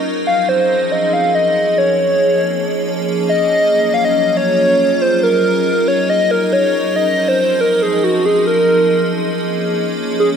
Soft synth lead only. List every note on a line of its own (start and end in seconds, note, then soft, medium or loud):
0.27 0.50 F5 loud
0.49 0.93 C5 medium
0.92 1.15 D#5 loud
1.13 1.34 F5 loud
1.35 1.79 D#5 loud
1.78 3.07 C#5 medium
3.29 3.95 D#5 loud
3.94 4.06 F5 loud
4.04 4.38 D#5 loud
4.37 5.03 C#5 loud
5.02 5.23 C5 loud
5.23 5.89 A#4 loud
5.88 6.11 C#5 loud
6.10 6.33 D#5 loud
6.31 6.54 A#4 medium
6.53 6.97 C#5 loud
6.96 7.30 D#5 loud
7.28 7.62 C5 loud
7.61 7.84 A#4 medium
7.82 8.05 G#4 medium
8.04 8.27 F#4 medium
8.25 8.46 G#4 medium
8.47 9.29 A#4 medium
10.20 10.29 G#4 medium